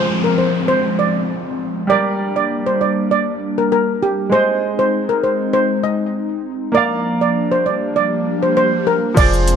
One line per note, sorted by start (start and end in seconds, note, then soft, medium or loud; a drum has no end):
0.00 1.85 F3 medium
0.00 1.88 F3 medium
0.00 1.88 G#3 medium
0.00 1.88 C4 medium
0.00 1.85 F4 medium
0.00 1.86 G#4 medium
0.00 1.87 C5 medium
0.00 downlifter medium
0.24 0.35 A#4 medium
0.38 0.50 C5 medium
0.68 0.81 C5 medium
0.99 1.11 D5 medium
1.87 4.27 G3 medium
1.87 4.30 G3 medium
1.87 4.30 A#3 medium
1.87 4.30 D4 medium
1.87 4.28 G4 medium
1.87 4.29 A#4 medium
1.87 2.13 D5 medium
1.93 4.30 D5 medium
2.36 2.47 D5 medium
2.66 2.77 C5 medium
2.81 2.93 D5 medium
3.11 3.23 D5 medium
3.58 3.69 A#4 medium
3.72 3.84 A#4 medium
4.03 4.14 G4 medium
4.29 6.69 G#3 medium
4.29 6.72 G#3 medium
4.29 6.72 C4 medium
4.29 6.72 D#4 medium
4.29 6.70 G#4 medium
4.29 4.55 C5 loud
4.29 6.71 C5 medium
4.29 swell medium
4.35 6.72 D#5 medium
4.79 4.90 C5 medium
5.09 5.20 A#4 medium
5.23 5.36 C5 medium
5.53 5.66 C5 medium
5.84 5.96 D#5 medium
6.72 9.15 F3 medium
6.72 9.12 A#3 medium
6.72 9.15 A#3 medium
6.72 9.15 D4 medium
6.72 9.13 A#4 medium
6.72 6.98 D5 medium
6.72 9.13 D5 medium
6.77 9.14 F5 medium
7.21 7.32 D5 medium
7.52 7.62 C5 medium
7.66 7.78 D5 medium
7.96 8.08 D5 medium
8.43 8.53 C5 medium
8.57 8.69 C5 medium
8.87 8.99 A#4 medium
9.14 9.55 F1 loud
9.14 9.56 F3 medium
9.14 9.56 G#3 medium
9.14 9.56 C4 medium
9.14 9.56 F4 medium
9.14 9.56 G#4 medium
9.14 9.29 D5 loud
9.14 kick loud
9.14 crash loud
9.14 shaker medium
9.20 9.56 C5 medium
9.33 shaker medium
9.48 closed hi-hat medium
9.48 shaker medium